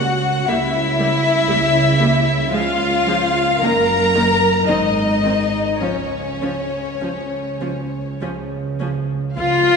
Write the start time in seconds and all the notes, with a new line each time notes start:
Already playing: C#2 C#3 F#4 F#5
0.48 C#2 C#3 G3 A#3 E4 E5
0.99 G3 A#3
1.47 C#2 C#3 G3 A#3
2.00 G3 A#3
2.50 C#2 C#3 F3 G#3 F4 F5
3.07 F3 G#3
3.60 F#1 F#2 D#3 A#3 A#4 A#5
4.14 D#3 A#3
4.66 G#1 G#2 D#3 C4 D#4 D#5
5.24 D#3 C4
5.81 C#2 C#3 F3 C#4 C#5
6.42 F3 C#4
7.02 C#2 C#3 F3 C#4
7.62 F3 C#4
8.20 C#2 C#3 F3 C#4
8.80 F3 C#4
9.36 C#2 F3 F4 F5